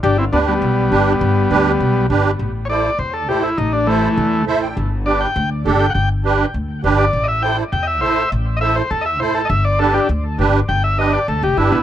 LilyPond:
<<
  \new Staff \with { instrumentName = "Transistor combo organ" } { \time 4/4 \key a \minor \tempo 4 = 203 <d' g'>8 <c' e'>8 <b d'>8 <g b>2~ <g b>8~ | <g b>2. r4 | r4 <cis'' d''>4 c''8 a'8 g'8 e'8 | dis'8 d'8 <e a>2 r4 |
r4 d''8 g''4 r4 g''8 | <fis'' g''>8 r2. d''8~ | d''8 <dis'' e''>8 g''8 r8 g''8 <dis'' e''>8 <c'' e''>4 | r4 <dis'' e''>8 c''8 a'8 <dis'' e''>8 c''8 a'8 |
<dis'' e''>8 d''8 a'8 <d' g'>8 r2 | g''8 e''8 dis''8 d''8 a'8 g'8 e'8 <b e'>8 | }
  \new Staff \with { instrumentName = "Accordion" } { \time 4/4 \key a \minor r4 <d' g' b'>8 r4. <d' g' b'>8 r8 | r4 <d' g' b'>8 r4. <d' g' b'>8 r8 | r4 <e' a' c''>8 r4. <e' a' c''>8 r8 | r4 <e' a' c''>8 r4. <e' a' c'' e''>8 g''8 |
r4 <d' g' b'>8 r4. <d' g' a'>8 r8 | r4 <d' g' b'>8 r4. <d' g' b'>8 r8 | r4 <e' a' c''>8 r4. <e' a' c''>8 r8 | r4 <e' a' c''>8 r4. <e' a' c''>8 r8 |
r4 <d' g' b'>8 r4. <d' g' b'>8 r8 | r4 <d' g' b'>8 r4. <d' g' b'>8 r8 | }
  \new Staff \with { instrumentName = "Upright bass" } { \clef bass \time 4/4 \key a \minor g,,4 d,4 b,,4 g,,4 | g,,4 d,4 b,,4 g,,4 | a,,2 e,4 a,,4 | a,,2 e,4 a,,4 |
g,,2 d,4 g,,4 | g,,2 d,4 g,,4 | a,,2 e,4 a,,4 | a,,2 e,4 a,,4 |
g,,2 d,4 g,,4 | g,,2 d,8 f,,8 g,,8 a,,8 | }
>>